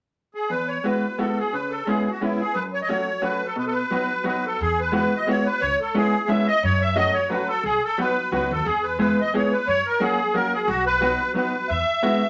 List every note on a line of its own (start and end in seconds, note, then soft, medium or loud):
0.34 0.51 G#4 medium
0.50 0.77 E2 soft
0.50 0.70 B4 medium
0.68 0.85 C#5 medium
0.83 1.04 G#3 soft
0.83 1.04 B3 soft
0.83 1.04 E4 soft
0.83 1.04 F#4 soft
0.83 1.20 B4 medium
1.18 1.38 G#3 soft
1.18 1.39 B3 soft
1.18 1.39 E4 soft
1.18 1.39 F#4 soft
1.18 1.39 A4 medium
1.38 1.55 G#4 medium
1.53 1.80 C#3 soft
1.53 1.73 B4 medium
1.70 1.88 A4 medium
1.85 2.07 G#3 soft
1.85 2.07 B3 soft
1.85 2.07 C#4 soft
1.85 2.07 E4 soft
1.85 2.10 G#4 medium
2.10 2.22 F#4 medium
2.21 2.41 G#3 soft
2.21 2.41 B3 soft
2.21 2.41 C#4 soft
2.21 2.41 E4 medium
2.21 2.41 E4 soft
2.39 2.56 G#4 medium
2.54 2.81 F#2 soft
2.54 2.63 B4 medium
2.73 2.81 C#5 medium
2.82 3.24 C#5 medium
2.82 2.88 D#5 medium
2.89 3.08 F#3 soft
2.89 3.08 A3 soft
2.89 3.08 C#4 soft
2.89 3.08 F#4 soft
3.22 3.41 F#3 soft
3.22 3.41 A3 soft
3.22 3.41 C#4 soft
3.22 3.41 F#4 soft
3.22 3.47 B4 medium
3.46 3.57 A4 medium
3.56 3.83 B2 soft
3.56 3.65 B4 medium
3.66 3.73 A4 medium
3.71 4.25 B4 medium
3.91 4.10 F#3 soft
3.91 4.10 B3 soft
3.91 4.10 D#4 soft
3.91 4.10 F#4 soft
4.24 4.44 F#3 soft
4.24 4.44 B3 soft
4.24 4.44 D#4 soft
4.24 4.44 F#4 medium
4.24 4.46 B4 medium
4.46 4.62 A4 medium
4.60 5.04 E2 medium
4.60 4.80 G#4 medium
4.80 4.93 B4 medium
4.92 5.12 G#3 soft
4.92 5.12 B3 soft
4.92 5.12 E4 soft
4.92 5.12 F#4 medium
4.92 5.18 B4 medium
5.17 5.28 D#5 medium
5.27 5.46 G#3 soft
5.27 5.46 B3 soft
5.27 5.46 E4 soft
5.27 5.46 F#4 soft
5.27 5.47 C#5 medium
5.46 5.62 B4 medium
5.60 5.74 C#2 medium
5.60 5.80 C#5 medium
5.81 5.96 A4 medium
5.94 6.13 G#3 medium
5.94 6.14 B3 soft
5.94 6.13 C#4 soft
5.94 6.13 E4 soft
5.94 6.30 G#4 medium
6.28 6.47 G#3 medium
6.28 6.47 B3 soft
6.28 6.47 C#4 soft
6.28 6.47 E4 soft
6.28 6.47 E5 medium
6.47 6.63 D#5 medium
6.63 7.07 F#2 loud
6.63 6.82 C#5 medium
6.81 6.97 E5 medium
6.95 7.14 F#3 medium
6.95 7.14 A3 soft
6.95 7.15 C#4 soft
6.95 7.15 F#4 soft
6.95 7.15 D#5 medium
7.13 7.29 C#5 medium
7.29 7.49 F#3 medium
7.29 7.49 A3 soft
7.29 7.49 C#4 soft
7.29 7.49 F#4 soft
7.29 7.48 B4 medium
7.48 7.64 A4 medium
7.64 7.76 B1 medium
7.64 7.83 G#4 medium
7.84 7.99 A4 medium
7.98 8.17 F#3 soft
7.98 8.17 B3 soft
7.98 8.17 D#4 soft
7.98 8.17 F#4 medium
7.98 8.32 B4 medium
8.32 8.49 C#2 medium
8.32 8.51 F#3 soft
8.32 8.51 B3 soft
8.32 8.51 D#4 soft
8.32 8.51 F#4 medium
8.32 8.52 B4 medium
8.51 8.65 D#2 medium
8.51 8.67 A4 medium
8.65 9.10 E2 medium
8.65 8.85 G#4 medium
8.83 8.98 B4 medium
8.99 9.18 G#3 soft
8.99 9.18 B3 soft
8.99 9.18 E4 soft
8.99 9.18 G#4 medium
8.99 9.21 B4 medium
9.21 9.33 D#5 medium
9.34 9.53 G#3 soft
9.34 9.53 B3 soft
9.34 9.53 E4 soft
9.34 9.52 G#4 medium
9.34 9.53 C#5 medium
9.52 9.68 B4 medium
9.67 9.79 F#2 medium
9.67 9.87 C#5 medium
9.86 10.02 A#4 medium
10.00 10.19 F#3 medium
10.00 10.19 A#3 soft
10.00 10.19 C#4 soft
10.00 10.19 F#4 medium
10.00 10.36 G#4 medium
10.34 10.53 F#3 medium
10.34 10.53 A#3 soft
10.34 10.53 C#4 soft
10.34 10.53 F#4 soft
10.34 10.54 A#4 medium
10.53 10.69 G#4 medium
10.67 11.12 B1 loud
10.67 10.85 F#4 medium
10.86 11.32 B4 medium
11.01 11.20 F#3 soft
11.01 11.20 B3 soft
11.01 11.20 D#4 soft
11.01 11.20 F#4 medium
11.34 11.54 F#3 soft
11.34 11.54 B3 soft
11.34 11.54 D#4 soft
11.34 11.54 F#4 soft
11.34 11.70 B4 medium
11.69 11.82 E2 medium
11.69 12.29 E5 medium
12.03 12.22 G#3 soft
12.03 12.22 B3 medium
12.03 12.22 E4 soft
12.03 12.22 F#4 medium